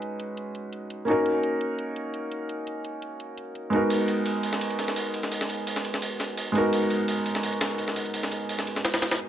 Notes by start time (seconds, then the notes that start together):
Already playing: G#3 C#4 D#4 F#4 B4
0.02 closed hi-hat
0.20 closed hi-hat
0.37 closed hi-hat
0.55 closed hi-hat
0.73 closed hi-hat
0.90 closed hi-hat
1.05 A#3 C#4 D#4, closed hi-hat
1.09 F#4 A#4
1.26 closed hi-hat
1.43 closed hi-hat
1.61 closed hi-hat
1.79 closed hi-hat
1.96 closed hi-hat
2.14 closed hi-hat
2.32 closed hi-hat
2.49 closed hi-hat
2.67 closed hi-hat
2.85 closed hi-hat
3.02 closed hi-hat
3.20 closed hi-hat
3.38 closed hi-hat
3.55 closed hi-hat
3.70 G#3 B3 D#4, closed hi-hat
3.74 F#4 A#4
3.90 closed hi-hat, ride
4.08 closed hi-hat, ride
4.26 closed hi-hat, ride
4.43 closed hi-hat, ride
4.53 snare
4.61 closed hi-hat, ride
4.70 ride
4.79 snare, closed hi-hat, ride
4.88 snare
4.96 closed hi-hat, ride
5.14 closed hi-hat, ride
5.23 snare
5.31 closed hi-hat, ride
5.41 snare
5.49 closed hi-hat, ride
5.67 closed hi-hat, ride
5.76 snare
5.84 closed hi-hat, ride
5.94 snare
6.02 closed hi-hat, ride
6.20 snare, closed hi-hat, ride
6.37 closed hi-hat, ride
6.52 G#3 B3 D#4, closed hi-hat, ride
6.57 F#4 A#4
6.73 closed hi-hat, ride
6.90 closed hi-hat, ride
7.08 closed hi-hat, ride
7.26 closed hi-hat, ride
7.35 snare
7.43 closed hi-hat, ride
7.53 ride
7.61 snare, closed hi-hat, ride
7.78 closed hi-hat, ride
7.88 snare
7.96 closed hi-hat, ride
8.06 ride
8.14 closed hi-hat, ride
8.23 snare
8.31 closed hi-hat, ride
8.49 closed hi-hat, ride
8.59 snare
8.67 closed hi-hat, ride
8.76 snare
8.85 snare, closed hi-hat, ride
8.94 snare, ride
9.02 snare, closed hi-hat, ride
9.11 snare, ride